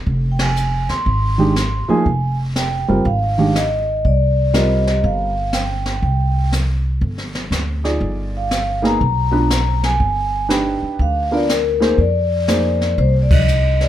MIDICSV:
0, 0, Header, 1, 6, 480
1, 0, Start_track
1, 0, Key_signature, -3, "minor"
1, 0, Tempo, 496278
1, 74, Time_signature, 4, 2, 24, 8
1, 13429, End_track
2, 0, Start_track
2, 0, Title_t, "Vibraphone"
2, 0, Program_c, 0, 11
2, 305, Note_on_c, 0, 79, 57
2, 392, Note_on_c, 0, 80, 74
2, 393, Note_off_c, 0, 79, 0
2, 839, Note_off_c, 0, 80, 0
2, 867, Note_on_c, 0, 84, 93
2, 1832, Note_on_c, 0, 80, 65
2, 1861, Note_off_c, 0, 84, 0
2, 2280, Note_off_c, 0, 80, 0
2, 2479, Note_on_c, 0, 79, 93
2, 2957, Note_on_c, 0, 77, 87
2, 2973, Note_off_c, 0, 79, 0
2, 3436, Note_on_c, 0, 75, 77
2, 3453, Note_off_c, 0, 77, 0
2, 3928, Note_on_c, 0, 74, 69
2, 3932, Note_off_c, 0, 75, 0
2, 4387, Note_on_c, 0, 75, 77
2, 4418, Note_off_c, 0, 74, 0
2, 4881, Note_on_c, 0, 77, 77
2, 4888, Note_off_c, 0, 75, 0
2, 5349, Note_on_c, 0, 79, 72
2, 5374, Note_off_c, 0, 77, 0
2, 5820, Note_off_c, 0, 79, 0
2, 5831, Note_on_c, 0, 79, 73
2, 6281, Note_off_c, 0, 79, 0
2, 8094, Note_on_c, 0, 77, 77
2, 8531, Note_off_c, 0, 77, 0
2, 8571, Note_on_c, 0, 82, 98
2, 9482, Note_off_c, 0, 82, 0
2, 9524, Note_on_c, 0, 80, 98
2, 10121, Note_off_c, 0, 80, 0
2, 10169, Note_on_c, 0, 79, 78
2, 10655, Note_off_c, 0, 79, 0
2, 10655, Note_on_c, 0, 77, 79
2, 10964, Note_on_c, 0, 74, 73
2, 10971, Note_off_c, 0, 77, 0
2, 11124, Note_off_c, 0, 74, 0
2, 11132, Note_on_c, 0, 70, 69
2, 11607, Note_on_c, 0, 74, 73
2, 11616, Note_off_c, 0, 70, 0
2, 12559, Note_on_c, 0, 72, 71
2, 12589, Note_off_c, 0, 74, 0
2, 12660, Note_off_c, 0, 72, 0
2, 12788, Note_on_c, 0, 74, 57
2, 12874, Note_off_c, 0, 74, 0
2, 12880, Note_on_c, 0, 75, 82
2, 13360, Note_on_c, 0, 74, 82
2, 13370, Note_off_c, 0, 75, 0
2, 13429, Note_off_c, 0, 74, 0
2, 13429, End_track
3, 0, Start_track
3, 0, Title_t, "Grand piano"
3, 0, Program_c, 1, 0
3, 1334, Note_on_c, 1, 51, 64
3, 1342, Note_on_c, 1, 56, 55
3, 1347, Note_on_c, 1, 62, 53
3, 1348, Note_on_c, 1, 67, 65
3, 1490, Note_off_c, 1, 51, 0
3, 1494, Note_off_c, 1, 56, 0
3, 1497, Note_off_c, 1, 62, 0
3, 1497, Note_off_c, 1, 67, 0
3, 1822, Note_on_c, 1, 53, 74
3, 1825, Note_on_c, 1, 58, 65
3, 1833, Note_on_c, 1, 63, 70
3, 1838, Note_on_c, 1, 68, 79
3, 1975, Note_off_c, 1, 53, 0
3, 1976, Note_off_c, 1, 58, 0
3, 1980, Note_off_c, 1, 63, 0
3, 1983, Note_off_c, 1, 68, 0
3, 2788, Note_on_c, 1, 55, 66
3, 2789, Note_on_c, 1, 60, 55
3, 2791, Note_on_c, 1, 65, 61
3, 2797, Note_on_c, 1, 70, 69
3, 2938, Note_off_c, 1, 55, 0
3, 2939, Note_off_c, 1, 60, 0
3, 2940, Note_off_c, 1, 65, 0
3, 2943, Note_off_c, 1, 70, 0
3, 3268, Note_on_c, 1, 51, 62
3, 3275, Note_on_c, 1, 56, 50
3, 3277, Note_on_c, 1, 62, 52
3, 3278, Note_on_c, 1, 67, 65
3, 3419, Note_off_c, 1, 51, 0
3, 3422, Note_off_c, 1, 56, 0
3, 3423, Note_off_c, 1, 62, 0
3, 3424, Note_off_c, 1, 67, 0
3, 4389, Note_on_c, 1, 55, 61
3, 4389, Note_on_c, 1, 60, 57
3, 4397, Note_on_c, 1, 65, 58
3, 4398, Note_on_c, 1, 70, 67
3, 5128, Note_off_c, 1, 55, 0
3, 5128, Note_off_c, 1, 60, 0
3, 5132, Note_off_c, 1, 65, 0
3, 5133, Note_off_c, 1, 70, 0
3, 7582, Note_on_c, 1, 63, 57
3, 7584, Note_on_c, 1, 65, 52
3, 7586, Note_on_c, 1, 68, 54
3, 7588, Note_on_c, 1, 74, 64
3, 8197, Note_off_c, 1, 63, 0
3, 8198, Note_off_c, 1, 65, 0
3, 8200, Note_off_c, 1, 68, 0
3, 8201, Note_off_c, 1, 74, 0
3, 8534, Note_on_c, 1, 58, 64
3, 8541, Note_on_c, 1, 59, 58
3, 8542, Note_on_c, 1, 63, 56
3, 8549, Note_on_c, 1, 68, 69
3, 8690, Note_off_c, 1, 58, 0
3, 8693, Note_off_c, 1, 59, 0
3, 8694, Note_off_c, 1, 63, 0
3, 8697, Note_off_c, 1, 68, 0
3, 9010, Note_on_c, 1, 59, 66
3, 9014, Note_on_c, 1, 62, 57
3, 9017, Note_on_c, 1, 65, 61
3, 9020, Note_on_c, 1, 71, 66
3, 9167, Note_off_c, 1, 59, 0
3, 9169, Note_off_c, 1, 62, 0
3, 9171, Note_off_c, 1, 65, 0
3, 9172, Note_off_c, 1, 71, 0
3, 10141, Note_on_c, 1, 62, 63
3, 10142, Note_on_c, 1, 63, 51
3, 10146, Note_on_c, 1, 67, 59
3, 10151, Note_on_c, 1, 71, 68
3, 10881, Note_off_c, 1, 62, 0
3, 10881, Note_off_c, 1, 63, 0
3, 10883, Note_off_c, 1, 67, 0
3, 10886, Note_off_c, 1, 71, 0
3, 10943, Note_on_c, 1, 59, 57
3, 10946, Note_on_c, 1, 62, 55
3, 10949, Note_on_c, 1, 65, 53
3, 10950, Note_on_c, 1, 70, 60
3, 11093, Note_off_c, 1, 59, 0
3, 11094, Note_off_c, 1, 62, 0
3, 11096, Note_off_c, 1, 65, 0
3, 11096, Note_off_c, 1, 70, 0
3, 11416, Note_on_c, 1, 58, 62
3, 11417, Note_on_c, 1, 63, 56
3, 11425, Note_on_c, 1, 68, 56
3, 11431, Note_on_c, 1, 72, 74
3, 11569, Note_off_c, 1, 58, 0
3, 11570, Note_off_c, 1, 63, 0
3, 11574, Note_off_c, 1, 68, 0
3, 11577, Note_off_c, 1, 72, 0
3, 12071, Note_on_c, 1, 58, 61
3, 12074, Note_on_c, 1, 63, 50
3, 12076, Note_on_c, 1, 68, 50
3, 12080, Note_on_c, 1, 72, 60
3, 12806, Note_off_c, 1, 58, 0
3, 12807, Note_off_c, 1, 63, 0
3, 12808, Note_off_c, 1, 68, 0
3, 12811, Note_off_c, 1, 72, 0
3, 13429, End_track
4, 0, Start_track
4, 0, Title_t, "Upright bass"
4, 0, Program_c, 2, 32
4, 61, Note_on_c, 2, 29, 66
4, 828, Note_off_c, 2, 29, 0
4, 861, Note_on_c, 2, 39, 58
4, 1018, Note_off_c, 2, 39, 0
4, 1025, Note_on_c, 2, 32, 72
4, 1790, Note_off_c, 2, 32, 0
4, 1992, Note_on_c, 2, 29, 66
4, 2754, Note_off_c, 2, 29, 0
4, 2797, Note_on_c, 2, 30, 66
4, 2945, Note_off_c, 2, 30, 0
4, 2951, Note_on_c, 2, 32, 82
4, 3877, Note_off_c, 2, 32, 0
4, 3913, Note_on_c, 2, 36, 69
4, 4838, Note_off_c, 2, 36, 0
4, 4871, Note_on_c, 2, 31, 77
4, 5796, Note_off_c, 2, 31, 0
4, 5824, Note_on_c, 2, 36, 68
4, 6752, Note_off_c, 2, 36, 0
4, 6782, Note_on_c, 2, 31, 71
4, 7235, Note_off_c, 2, 31, 0
4, 7261, Note_on_c, 2, 38, 63
4, 7714, Note_off_c, 2, 38, 0
4, 7743, Note_on_c, 2, 31, 72
4, 8670, Note_off_c, 2, 31, 0
4, 8715, Note_on_c, 2, 35, 79
4, 9635, Note_off_c, 2, 35, 0
4, 9671, Note_on_c, 2, 31, 66
4, 10430, Note_off_c, 2, 31, 0
4, 10632, Note_on_c, 2, 38, 73
4, 11553, Note_off_c, 2, 38, 0
4, 11585, Note_on_c, 2, 41, 69
4, 12510, Note_off_c, 2, 41, 0
4, 12555, Note_on_c, 2, 36, 85
4, 13429, Note_off_c, 2, 36, 0
4, 13429, End_track
5, 0, Start_track
5, 0, Title_t, "Muted upright bass strokes"
5, 1821, Note_on_c, 9, 29, 36
5, 1918, Note_off_c, 9, 29, 0
5, 10469, Note_on_c, 9, 29, 36
5, 10565, Note_off_c, 9, 29, 0
5, 13429, End_track
6, 0, Start_track
6, 0, Title_t, "Drums"
6, 63, Note_on_c, 9, 25, 42
6, 64, Note_on_c, 9, 36, 33
6, 161, Note_off_c, 9, 36, 0
6, 379, Note_on_c, 9, 38, 67
6, 381, Note_on_c, 9, 51, 55
6, 475, Note_off_c, 9, 38, 0
6, 477, Note_off_c, 9, 51, 0
6, 543, Note_on_c, 9, 44, 49
6, 640, Note_off_c, 9, 44, 0
6, 861, Note_on_c, 9, 38, 34
6, 958, Note_off_c, 9, 38, 0
6, 1028, Note_on_c, 9, 36, 28
6, 1029, Note_off_c, 9, 25, 0
6, 1029, Note_on_c, 9, 25, 43
6, 1124, Note_off_c, 9, 36, 0
6, 1510, Note_on_c, 9, 38, 54
6, 1512, Note_on_c, 9, 44, 49
6, 1607, Note_off_c, 9, 38, 0
6, 1608, Note_off_c, 9, 44, 0
6, 1992, Note_on_c, 9, 36, 32
6, 1994, Note_off_c, 9, 25, 0
6, 1994, Note_on_c, 9, 25, 38
6, 2089, Note_off_c, 9, 36, 0
6, 2474, Note_on_c, 9, 38, 56
6, 2476, Note_on_c, 9, 44, 48
6, 2571, Note_off_c, 9, 38, 0
6, 2573, Note_off_c, 9, 44, 0
6, 2954, Note_off_c, 9, 25, 0
6, 2954, Note_on_c, 9, 25, 44
6, 2954, Note_on_c, 9, 36, 28
6, 3051, Note_off_c, 9, 36, 0
6, 3440, Note_on_c, 9, 38, 53
6, 3442, Note_on_c, 9, 44, 50
6, 3536, Note_off_c, 9, 38, 0
6, 3538, Note_off_c, 9, 44, 0
6, 3917, Note_on_c, 9, 36, 32
6, 3920, Note_off_c, 9, 25, 0
6, 3920, Note_on_c, 9, 25, 39
6, 4013, Note_off_c, 9, 36, 0
6, 4392, Note_on_c, 9, 38, 57
6, 4394, Note_on_c, 9, 44, 55
6, 4489, Note_off_c, 9, 38, 0
6, 4491, Note_off_c, 9, 44, 0
6, 4713, Note_on_c, 9, 38, 46
6, 4809, Note_off_c, 9, 38, 0
6, 4871, Note_off_c, 9, 25, 0
6, 4871, Note_on_c, 9, 25, 44
6, 4874, Note_on_c, 9, 36, 29
6, 4971, Note_off_c, 9, 36, 0
6, 5347, Note_on_c, 9, 38, 50
6, 5349, Note_on_c, 9, 44, 57
6, 5444, Note_off_c, 9, 38, 0
6, 5446, Note_off_c, 9, 44, 0
6, 5664, Note_on_c, 9, 38, 37
6, 5761, Note_off_c, 9, 38, 0
6, 5824, Note_off_c, 9, 25, 0
6, 5824, Note_on_c, 9, 25, 46
6, 5829, Note_on_c, 9, 36, 31
6, 5926, Note_off_c, 9, 36, 0
6, 6311, Note_on_c, 9, 38, 58
6, 6313, Note_on_c, 9, 44, 55
6, 6408, Note_off_c, 9, 38, 0
6, 6410, Note_off_c, 9, 44, 0
6, 6787, Note_on_c, 9, 36, 31
6, 6788, Note_off_c, 9, 25, 0
6, 6788, Note_on_c, 9, 25, 46
6, 6883, Note_off_c, 9, 36, 0
6, 6945, Note_on_c, 9, 38, 26
6, 7041, Note_off_c, 9, 38, 0
6, 7108, Note_on_c, 9, 38, 41
6, 7204, Note_off_c, 9, 38, 0
6, 7273, Note_on_c, 9, 38, 54
6, 7275, Note_on_c, 9, 44, 48
6, 7369, Note_off_c, 9, 38, 0
6, 7371, Note_off_c, 9, 44, 0
6, 7590, Note_on_c, 9, 38, 35
6, 7687, Note_off_c, 9, 38, 0
6, 7750, Note_on_c, 9, 36, 31
6, 7751, Note_off_c, 9, 25, 0
6, 7751, Note_on_c, 9, 25, 45
6, 7847, Note_off_c, 9, 36, 0
6, 8232, Note_on_c, 9, 38, 52
6, 8234, Note_on_c, 9, 44, 52
6, 8328, Note_off_c, 9, 38, 0
6, 8330, Note_off_c, 9, 44, 0
6, 8559, Note_on_c, 9, 38, 35
6, 8656, Note_off_c, 9, 38, 0
6, 8713, Note_on_c, 9, 36, 29
6, 8716, Note_off_c, 9, 25, 0
6, 8716, Note_on_c, 9, 25, 43
6, 8810, Note_off_c, 9, 36, 0
6, 9192, Note_on_c, 9, 38, 55
6, 9194, Note_on_c, 9, 44, 53
6, 9289, Note_off_c, 9, 38, 0
6, 9291, Note_off_c, 9, 44, 0
6, 9513, Note_on_c, 9, 38, 51
6, 9610, Note_off_c, 9, 38, 0
6, 9673, Note_on_c, 9, 36, 28
6, 9676, Note_off_c, 9, 25, 0
6, 9676, Note_on_c, 9, 25, 45
6, 9769, Note_off_c, 9, 36, 0
6, 10157, Note_on_c, 9, 38, 59
6, 10159, Note_on_c, 9, 44, 49
6, 10254, Note_off_c, 9, 38, 0
6, 10256, Note_off_c, 9, 44, 0
6, 10633, Note_on_c, 9, 36, 29
6, 10636, Note_off_c, 9, 25, 0
6, 10636, Note_on_c, 9, 25, 43
6, 10730, Note_off_c, 9, 36, 0
6, 11116, Note_on_c, 9, 38, 52
6, 11118, Note_on_c, 9, 44, 58
6, 11213, Note_off_c, 9, 38, 0
6, 11215, Note_off_c, 9, 44, 0
6, 11431, Note_on_c, 9, 38, 37
6, 11528, Note_off_c, 9, 38, 0
6, 11589, Note_off_c, 9, 25, 0
6, 11589, Note_on_c, 9, 25, 45
6, 11590, Note_on_c, 9, 36, 30
6, 11687, Note_off_c, 9, 36, 0
6, 12072, Note_on_c, 9, 38, 57
6, 12074, Note_on_c, 9, 44, 51
6, 12169, Note_off_c, 9, 38, 0
6, 12171, Note_off_c, 9, 44, 0
6, 12393, Note_on_c, 9, 38, 36
6, 12490, Note_off_c, 9, 38, 0
6, 12553, Note_on_c, 9, 36, 27
6, 12554, Note_off_c, 9, 25, 0
6, 12554, Note_on_c, 9, 25, 44
6, 12650, Note_off_c, 9, 36, 0
6, 12871, Note_on_c, 9, 36, 82
6, 12871, Note_on_c, 9, 51, 73
6, 12968, Note_off_c, 9, 36, 0
6, 12968, Note_off_c, 9, 51, 0
6, 13037, Note_on_c, 9, 44, 48
6, 13134, Note_off_c, 9, 44, 0
6, 13355, Note_on_c, 9, 38, 36
6, 13429, Note_off_c, 9, 25, 0
6, 13429, Note_off_c, 9, 38, 0
6, 13429, End_track
0, 0, End_of_file